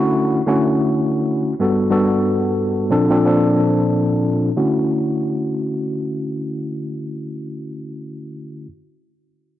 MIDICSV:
0, 0, Header, 1, 2, 480
1, 0, Start_track
1, 0, Key_signature, 2, "major"
1, 0, Tempo, 659341
1, 1404, Time_signature, 4, 2, 24, 8
1, 6984, End_track
2, 0, Start_track
2, 0, Title_t, "Tine electric piano"
2, 0, Program_c, 0, 4
2, 0, Note_on_c, 0, 50, 92
2, 0, Note_on_c, 0, 57, 86
2, 0, Note_on_c, 0, 61, 80
2, 0, Note_on_c, 0, 64, 83
2, 0, Note_on_c, 0, 66, 105
2, 290, Note_off_c, 0, 50, 0
2, 291, Note_off_c, 0, 57, 0
2, 293, Note_off_c, 0, 61, 0
2, 296, Note_off_c, 0, 64, 0
2, 297, Note_off_c, 0, 66, 0
2, 340, Note_on_c, 0, 50, 90
2, 344, Note_on_c, 0, 57, 90
2, 348, Note_on_c, 0, 61, 88
2, 352, Note_on_c, 0, 64, 80
2, 356, Note_on_c, 0, 66, 96
2, 1107, Note_off_c, 0, 50, 0
2, 1109, Note_off_c, 0, 57, 0
2, 1111, Note_off_c, 0, 61, 0
2, 1113, Note_off_c, 0, 64, 0
2, 1115, Note_off_c, 0, 66, 0
2, 1161, Note_on_c, 0, 43, 84
2, 1166, Note_on_c, 0, 55, 76
2, 1169, Note_on_c, 0, 59, 75
2, 1174, Note_on_c, 0, 66, 69
2, 1177, Note_on_c, 0, 69, 87
2, 1376, Note_off_c, 0, 43, 0
2, 1380, Note_off_c, 0, 55, 0
2, 1384, Note_off_c, 0, 59, 0
2, 1384, Note_on_c, 0, 43, 91
2, 1388, Note_off_c, 0, 66, 0
2, 1389, Note_on_c, 0, 55, 81
2, 1391, Note_off_c, 0, 69, 0
2, 1393, Note_on_c, 0, 59, 81
2, 1396, Note_on_c, 0, 66, 79
2, 1400, Note_on_c, 0, 69, 96
2, 2110, Note_on_c, 0, 46, 92
2, 2114, Note_off_c, 0, 43, 0
2, 2114, Note_on_c, 0, 53, 87
2, 2117, Note_off_c, 0, 55, 0
2, 2117, Note_off_c, 0, 69, 0
2, 2118, Note_on_c, 0, 60, 86
2, 2119, Note_off_c, 0, 59, 0
2, 2120, Note_off_c, 0, 66, 0
2, 2122, Note_on_c, 0, 62, 91
2, 2126, Note_on_c, 0, 69, 102
2, 2245, Note_off_c, 0, 46, 0
2, 2249, Note_off_c, 0, 53, 0
2, 2253, Note_off_c, 0, 60, 0
2, 2253, Note_on_c, 0, 46, 92
2, 2257, Note_off_c, 0, 62, 0
2, 2258, Note_on_c, 0, 53, 87
2, 2261, Note_off_c, 0, 69, 0
2, 2262, Note_on_c, 0, 60, 92
2, 2266, Note_on_c, 0, 62, 86
2, 2269, Note_on_c, 0, 69, 104
2, 2358, Note_off_c, 0, 46, 0
2, 2362, Note_off_c, 0, 53, 0
2, 2366, Note_off_c, 0, 60, 0
2, 2367, Note_on_c, 0, 46, 97
2, 2370, Note_off_c, 0, 62, 0
2, 2371, Note_on_c, 0, 53, 80
2, 2375, Note_off_c, 0, 69, 0
2, 2375, Note_on_c, 0, 60, 74
2, 2379, Note_on_c, 0, 62, 85
2, 2383, Note_on_c, 0, 69, 100
2, 3267, Note_off_c, 0, 46, 0
2, 3269, Note_off_c, 0, 53, 0
2, 3271, Note_off_c, 0, 60, 0
2, 3273, Note_off_c, 0, 62, 0
2, 3276, Note_off_c, 0, 69, 0
2, 3321, Note_on_c, 0, 50, 80
2, 3323, Note_on_c, 0, 57, 72
2, 3325, Note_on_c, 0, 61, 73
2, 3327, Note_on_c, 0, 64, 75
2, 3329, Note_on_c, 0, 66, 86
2, 6306, Note_off_c, 0, 50, 0
2, 6307, Note_off_c, 0, 57, 0
2, 6308, Note_off_c, 0, 61, 0
2, 6309, Note_off_c, 0, 64, 0
2, 6310, Note_off_c, 0, 66, 0
2, 6984, End_track
0, 0, End_of_file